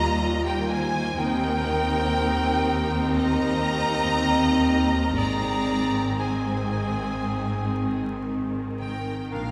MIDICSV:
0, 0, Header, 1, 11, 480
1, 0, Start_track
1, 0, Tempo, 966184
1, 584, Time_signature, 4, 2, 24, 8
1, 1069, Tempo, 996678
1, 2029, Tempo, 1034483
1, 4520, End_track
2, 0, Start_track
2, 0, Title_t, "Flute"
2, 0, Program_c, 0, 73
2, 0, Note_on_c, 0, 82, 106
2, 65, Note_off_c, 0, 82, 0
2, 219, Note_on_c, 0, 79, 93
2, 334, Note_off_c, 0, 79, 0
2, 337, Note_on_c, 0, 80, 107
2, 583, Note_on_c, 0, 79, 104
2, 591, Note_off_c, 0, 80, 0
2, 1411, Note_off_c, 0, 79, 0
2, 1540, Note_on_c, 0, 82, 113
2, 2480, Note_off_c, 0, 82, 0
2, 2504, Note_on_c, 0, 82, 99
2, 2979, Note_on_c, 0, 80, 74
2, 2986, Note_off_c, 0, 82, 0
2, 3938, Note_off_c, 0, 80, 0
2, 4186, Note_on_c, 0, 79, 74
2, 4426, Note_on_c, 0, 77, 71
2, 4433, Note_off_c, 0, 79, 0
2, 4520, Note_off_c, 0, 77, 0
2, 4520, End_track
3, 0, Start_track
3, 0, Title_t, "Violin section"
3, 0, Program_c, 1, 48
3, 0, Note_on_c, 1, 82, 121
3, 226, Note_off_c, 1, 82, 0
3, 228, Note_on_c, 1, 79, 100
3, 344, Note_off_c, 1, 79, 0
3, 345, Note_on_c, 1, 80, 106
3, 584, Note_off_c, 1, 80, 0
3, 589, Note_on_c, 1, 79, 117
3, 1545, Note_on_c, 1, 82, 121
3, 1548, Note_off_c, 1, 79, 0
3, 2501, Note_off_c, 1, 82, 0
3, 2506, Note_on_c, 1, 82, 107
3, 2971, Note_off_c, 1, 82, 0
3, 2986, Note_on_c, 1, 80, 79
3, 3942, Note_off_c, 1, 80, 0
3, 4187, Note_on_c, 1, 79, 80
3, 4412, Note_off_c, 1, 79, 0
3, 4437, Note_on_c, 1, 77, 87
3, 4520, Note_off_c, 1, 77, 0
3, 4520, End_track
4, 0, Start_track
4, 0, Title_t, "Violin section"
4, 0, Program_c, 2, 48
4, 0, Note_on_c, 2, 75, 105
4, 215, Note_off_c, 2, 75, 0
4, 232, Note_on_c, 2, 70, 89
4, 348, Note_off_c, 2, 70, 0
4, 354, Note_on_c, 2, 72, 97
4, 587, Note_on_c, 2, 70, 97
4, 589, Note_off_c, 2, 72, 0
4, 1544, Note_on_c, 2, 75, 117
4, 1547, Note_off_c, 2, 70, 0
4, 2482, Note_off_c, 2, 75, 0
4, 2501, Note_on_c, 2, 74, 92
4, 2969, Note_off_c, 2, 74, 0
4, 2972, Note_on_c, 2, 72, 69
4, 3916, Note_off_c, 2, 72, 0
4, 4175, Note_on_c, 2, 70, 69
4, 4406, Note_off_c, 2, 70, 0
4, 4426, Note_on_c, 2, 70, 73
4, 4520, Note_off_c, 2, 70, 0
4, 4520, End_track
5, 0, Start_track
5, 0, Title_t, "Cor anglais"
5, 0, Program_c, 3, 69
5, 590, Note_on_c, 3, 70, 93
5, 1529, Note_off_c, 3, 70, 0
5, 1552, Note_on_c, 3, 70, 85
5, 2509, Note_on_c, 3, 68, 67
5, 2516, Note_off_c, 3, 70, 0
5, 2977, Note_off_c, 3, 68, 0
5, 2980, Note_on_c, 3, 68, 72
5, 4252, Note_off_c, 3, 68, 0
5, 4427, Note_on_c, 3, 70, 60
5, 4501, Note_off_c, 3, 70, 0
5, 4520, End_track
6, 0, Start_track
6, 0, Title_t, "Harp"
6, 0, Program_c, 4, 46
6, 0, Note_on_c, 4, 51, 82
6, 0, Note_on_c, 4, 53, 60
6, 0, Note_on_c, 4, 55, 67
6, 0, Note_on_c, 4, 58, 62
6, 0, Note_on_c, 4, 63, 55
6, 0, Note_on_c, 4, 65, 72
6, 0, Note_on_c, 4, 70, 66
6, 0, Note_on_c, 4, 77, 77
6, 0, Note_on_c, 4, 82, 72
6, 104, Note_off_c, 4, 63, 0
6, 110, Note_on_c, 4, 63, 71
6, 217, Note_off_c, 4, 55, 0
6, 223, Note_on_c, 4, 55, 68
6, 340, Note_off_c, 4, 63, 0
6, 346, Note_on_c, 4, 63, 71
6, 369, Note_off_c, 4, 53, 0
6, 456, Note_off_c, 4, 55, 0
6, 462, Note_on_c, 4, 55, 70
6, 485, Note_off_c, 4, 58, 0
6, 581, Note_off_c, 4, 51, 0
6, 587, Note_on_c, 4, 51, 89
6, 602, Note_off_c, 4, 77, 0
6, 603, Note_off_c, 4, 65, 0
6, 707, Note_on_c, 4, 58, 58
6, 823, Note_off_c, 4, 63, 0
6, 829, Note_on_c, 4, 63, 62
6, 947, Note_on_c, 4, 72, 68
6, 1065, Note_off_c, 4, 70, 0
6, 1071, Note_on_c, 4, 70, 72
6, 1309, Note_on_c, 4, 84, 75
6, 1423, Note_off_c, 4, 82, 0
6, 1429, Note_on_c, 4, 82, 69
6, 1538, Note_off_c, 4, 84, 0
6, 1543, Note_on_c, 4, 84, 75
6, 1784, Note_off_c, 4, 72, 0
6, 1901, Note_off_c, 4, 63, 0
6, 1907, Note_on_c, 4, 63, 61
6, 2026, Note_off_c, 4, 58, 0
6, 2032, Note_on_c, 4, 58, 66
6, 2138, Note_off_c, 4, 63, 0
6, 2254, Note_off_c, 4, 58, 0
6, 2260, Note_on_c, 4, 58, 60
6, 2347, Note_off_c, 4, 55, 0
6, 2377, Note_on_c, 4, 63, 56
6, 2464, Note_off_c, 4, 51, 0
6, 2506, Note_on_c, 4, 44, 71
6, 2518, Note_off_c, 4, 58, 0
6, 2521, Note_off_c, 4, 70, 0
6, 2522, Note_off_c, 4, 82, 0
6, 2622, Note_on_c, 4, 51, 51
6, 2745, Note_on_c, 4, 56, 54
6, 2856, Note_off_c, 4, 63, 0
6, 2861, Note_on_c, 4, 63, 56
6, 2989, Note_on_c, 4, 72, 58
6, 3103, Note_on_c, 4, 68, 57
6, 3223, Note_on_c, 4, 75, 58
6, 3334, Note_off_c, 4, 84, 0
6, 3340, Note_on_c, 4, 84, 54
6, 3454, Note_off_c, 4, 75, 0
6, 3460, Note_on_c, 4, 75, 60
6, 3578, Note_off_c, 4, 68, 0
6, 3584, Note_on_c, 4, 68, 57
6, 3692, Note_off_c, 4, 63, 0
6, 3698, Note_on_c, 4, 63, 53
6, 3817, Note_off_c, 4, 56, 0
6, 3822, Note_on_c, 4, 56, 53
6, 3943, Note_off_c, 4, 51, 0
6, 3948, Note_on_c, 4, 51, 50
6, 4062, Note_off_c, 4, 56, 0
6, 4067, Note_on_c, 4, 56, 49
6, 4187, Note_off_c, 4, 51, 0
6, 4192, Note_on_c, 4, 51, 50
6, 4310, Note_off_c, 4, 56, 0
6, 4315, Note_on_c, 4, 56, 49
6, 4316, Note_off_c, 4, 44, 0
6, 4434, Note_on_c, 4, 46, 69
6, 4446, Note_off_c, 4, 63, 0
6, 4446, Note_off_c, 4, 75, 0
6, 4446, Note_off_c, 4, 84, 0
6, 4449, Note_off_c, 4, 68, 0
6, 4451, Note_off_c, 4, 51, 0
6, 4451, Note_off_c, 4, 56, 0
6, 4451, Note_off_c, 4, 72, 0
6, 4520, Note_off_c, 4, 46, 0
6, 4520, End_track
7, 0, Start_track
7, 0, Title_t, "Clarinet"
7, 0, Program_c, 5, 71
7, 579, Note_on_c, 5, 60, 93
7, 1523, Note_off_c, 5, 60, 0
7, 1538, Note_on_c, 5, 60, 89
7, 2479, Note_off_c, 5, 60, 0
7, 2505, Note_on_c, 5, 60, 73
7, 2971, Note_off_c, 5, 60, 0
7, 2978, Note_on_c, 5, 60, 72
7, 4252, Note_off_c, 5, 60, 0
7, 4428, Note_on_c, 5, 62, 58
7, 4502, Note_off_c, 5, 62, 0
7, 4520, End_track
8, 0, Start_track
8, 0, Title_t, "Viola section"
8, 0, Program_c, 6, 48
8, 0, Note_on_c, 6, 55, 84
8, 0, Note_on_c, 6, 65, 82
8, 563, Note_off_c, 6, 55, 0
8, 583, Note_on_c, 6, 63, 84
8, 585, Note_off_c, 6, 65, 0
8, 585, Note_on_c, 6, 60, 81
8, 2482, Note_off_c, 6, 63, 0
8, 2483, Note_off_c, 6, 60, 0
8, 2504, Note_on_c, 6, 60, 70
8, 2505, Note_on_c, 6, 51, 69
8, 4312, Note_off_c, 6, 60, 0
8, 4426, Note_on_c, 6, 58, 60
8, 4520, Note_off_c, 6, 51, 0
8, 4520, Note_off_c, 6, 58, 0
8, 4520, End_track
9, 0, Start_track
9, 0, Title_t, "French horn section"
9, 0, Program_c, 7, 60
9, 0, Note_on_c, 7, 55, 83
9, 0, Note_on_c, 7, 65, 81
9, 508, Note_off_c, 7, 55, 0
9, 508, Note_off_c, 7, 65, 0
9, 592, Note_on_c, 7, 60, 96
9, 594, Note_on_c, 7, 58, 89
9, 1530, Note_off_c, 7, 60, 0
9, 1531, Note_off_c, 7, 58, 0
9, 1549, Note_on_c, 7, 60, 89
9, 1551, Note_on_c, 7, 58, 96
9, 2484, Note_off_c, 7, 60, 0
9, 2485, Note_off_c, 7, 58, 0
9, 2509, Note_on_c, 7, 60, 69
9, 2511, Note_on_c, 7, 56, 72
9, 2973, Note_off_c, 7, 60, 0
9, 2978, Note_off_c, 7, 56, 0
9, 2983, Note_on_c, 7, 56, 70
9, 2983, Note_on_c, 7, 60, 76
9, 4254, Note_off_c, 7, 56, 0
9, 4254, Note_off_c, 7, 60, 0
9, 4432, Note_on_c, 7, 58, 76
9, 4433, Note_on_c, 7, 62, 75
9, 4520, Note_off_c, 7, 58, 0
9, 4520, Note_off_c, 7, 62, 0
9, 4520, End_track
10, 0, Start_track
10, 0, Title_t, "Cello section"
10, 0, Program_c, 8, 48
10, 0, Note_on_c, 8, 39, 86
10, 574, Note_off_c, 8, 39, 0
10, 580, Note_on_c, 8, 39, 97
10, 2480, Note_off_c, 8, 39, 0
10, 2504, Note_on_c, 8, 44, 82
10, 4331, Note_off_c, 8, 44, 0
10, 4429, Note_on_c, 8, 46, 73
10, 4520, Note_off_c, 8, 46, 0
10, 4520, End_track
11, 0, Start_track
11, 0, Title_t, "Double bass section"
11, 0, Program_c, 10, 48
11, 0, Note_on_c, 10, 39, 86
11, 579, Note_off_c, 10, 39, 0
11, 585, Note_on_c, 10, 39, 90
11, 2483, Note_off_c, 10, 39, 0
11, 2505, Note_on_c, 10, 32, 79
11, 4331, Note_off_c, 10, 32, 0
11, 4430, Note_on_c, 10, 34, 74
11, 4520, Note_off_c, 10, 34, 0
11, 4520, End_track
0, 0, End_of_file